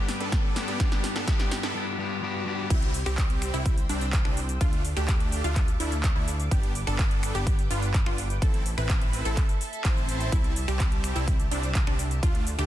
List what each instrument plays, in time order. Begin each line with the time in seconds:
Already playing: analog synth bass G1, clean electric guitar G2 G3 B3 D4 G4, analog synth pad B4 G5 D6, riser
0.09 snare, open hi-hat
0.20 analog synth bass G1, supersaw synth B3 D4 A4, closed hi-hat
0.32 kick, snare, closed hi-hat
0.55 clean electric guitar G2 G3 B3 D4 G4, snare, open hi-hat
0.68 analog synth bass G2, supersaw synth B3 D4 G4, closed hi-hat
0.79 clean electric guitar G2 G3 B3 D4 G4, supersaw synth B3 D4 G4, analog synth pad A5 C6 E6, kick, snare, closed hi-hat
0.92 snare, closed hi-hat
1.04 snare, open hi-hat
1.16 analog synth bass A1, supersaw synth B3 D4 A4, snare, closed hi-hat
1.26 clean electric guitar G2 G3 B3 D4 G4, supersaw synth B3 D4 G4, kick, snare, closed hi-hat
1.40 snare, closed hi-hat
1.51 snare, open hi-hat
1.63 analog synth bass A1, supersaw synth B3 D4 A4, snare, closed hi-hat
1.74 clean electric guitar G2 G3 B3 D4 G4
1.98 clean electric guitar G2 G3 B3 D4 G4
2.22 clean electric guitar G2 G3 B3 D4 G4
2.45 clean electric guitar G2 G3 B3 D4 G4
2.70 analog synth bass C2, supersaw synth G3 C4 E4, synth pluck E4, analog synth pad C5 G5 E6, kick, closed hi-hat, crash, shaker
2.82 closed hi-hat
2.94 open hi-hat, shaker
3.06 analog synth bass C2, supersaw synth G3 C4 G4, synth pluck G4, finger snap, closed hi-hat, shaker
3.18 kick, clap, closed hi-hat, shaker
3.30 closed hi-hat
3.42 finger snap, open hi-hat, shaker
3.54 analog synth bass C2, supersaw synth G3 C4 E4, synth pluck E4, closed hi-hat, shaker
3.66 kick, closed hi-hat, shaker
3.78 closed hi-hat, shaker
3.89 analog synth bass C2, supersaw synth G3 C4 D4, synth pluck D4, open hi-hat, shaker
4.01 closed hi-hat, shaker
4.13 kick, clap, closed hi-hat, shaker
4.25 analog synth bass C2, supersaw synth G3 C4 D4, synth pluck D4, finger snap
4.37 open hi-hat, shaker
4.49 closed hi-hat, shaker
4.61 analog synth bass D2, supersaw synth A3 D4 F4, synth pluck F4, analog synth pad A4 F5 D6, kick, closed hi-hat, shaker
4.73 closed hi-hat
4.85 open hi-hat, shaker
4.96 analog synth bass D2, supersaw synth A3 D4 G4, synth pluck G4, finger snap, closed hi-hat, shaker
5.08 kick, clap, closed hi-hat, shaker
5.20 closed hi-hat
5.32 open hi-hat, shaker
5.44 analog synth bass D2, supersaw synth A3 D4 F4, synth pluck F4, closed hi-hat, shaker
5.56 kick, clap, closed hi-hat, shaker
5.68 closed hi-hat, shaker
5.80 analog synth bass D2, supersaw synth A3 D4 E4, synth pluck E4, open hi-hat, shaker
5.92 closed hi-hat, shaker
6.04 kick, clap, closed hi-hat, shaker
6.16 analog synth bass D2, supersaw synth A3 D4 E4, synth pluck E4
6.28 open hi-hat, shaker
6.40 closed hi-hat, shaker
6.51 analog synth bass G1, supersaw synth B3 D4 G4, synth pluck G4, analog synth pad B4 G5, kick, closed hi-hat, shaker
6.63 closed hi-hat
6.75 open hi-hat, shaker
6.87 analog synth bass G1, supersaw synth B3 D4 A4, synth pluck A4, finger snap, closed hi-hat, shaker
6.99 kick, clap, closed hi-hat, shaker
7.11 closed hi-hat
7.23 finger snap, open hi-hat, shaker
7.35 analog synth bass G1, supersaw synth B3 D4 G4, synth pluck G4, closed hi-hat, shaker
7.47 kick, closed hi-hat, shaker
7.59 closed hi-hat, shaker
7.71 analog synth bass G1, supersaw synth B3 D4 F4, synth pluck F4, open hi-hat, shaker
7.83 closed hi-hat, shaker
7.94 kick, clap, closed hi-hat, shaker
8.06 analog synth bass G1, supersaw synth B3 D4 F4, synth pluck F4, finger snap
8.18 open hi-hat, shaker
8.30 closed hi-hat, shaker
8.42 analog synth bass A1, supersaw synth C4 E4 A4, analog synth pad A4 E5 A5, synth pluck A4, kick, closed hi-hat, shaker
8.54 closed hi-hat
8.66 open hi-hat, shaker
8.78 analog synth bass A1, supersaw synth C4 E4 B4, synth pluck B4, finger snap, closed hi-hat, shaker
8.89 kick, clap, closed hi-hat, shaker
9.02 closed hi-hat
9.13 open hi-hat, shaker
9.25 analog synth bass A1, supersaw synth C4 E4 A4, synth pluck A4, closed hi-hat, shaker
9.37 kick, clap, closed hi-hat, shaker
9.49 closed hi-hat, shaker
9.61 open hi-hat, shaker
9.73 closed hi-hat, shaker
9.85 analog synth bass A1, supersaw synth C4 E4 C5, synth pluck C5, kick, clap, closed hi-hat, shaker
9.97 shaker
10.09 open hi-hat, shaker
10.20 closed hi-hat, shaker
10.32 supersaw synth G3 C4 E4, synth pluck E4, analog synth pad G4, kick, closed hi-hat, shaker
10.44 closed hi-hat
10.56 open hi-hat, shaker
10.68 analog synth bass C2, supersaw synth G3 C4 G4, synth pluck G4, finger snap, closed hi-hat, shaker
10.80 kick, clap, closed hi-hat, shaker
10.92 closed hi-hat
11.04 finger snap, open hi-hat, shaker
11.15 analog synth bass C2, supersaw synth G3 C4 E4, synth pluck E4, closed hi-hat, shaker
11.28 kick, closed hi-hat, shaker
11.40 closed hi-hat, shaker
11.51 analog synth bass C2, supersaw synth G3 C4 D4, synth pluck D4, open hi-hat, shaker
11.63 closed hi-hat, shaker
11.75 kick, clap, closed hi-hat, shaker
11.87 analog synth bass C2, supersaw synth G3 C4 D4, synth pluck D4, finger snap
11.99 open hi-hat, shaker
12.11 closed hi-hat, shaker
12.23 analog synth bass D2, supersaw synth A3 D4 F4, synth pluck F4, analog synth pad A4 F5 D6, kick, closed hi-hat, shaker
12.35 closed hi-hat
12.47 open hi-hat, shaker
12.58 analog synth bass D2, supersaw synth A3 D4 G4, synth pluck G4, finger snap, closed hi-hat, shaker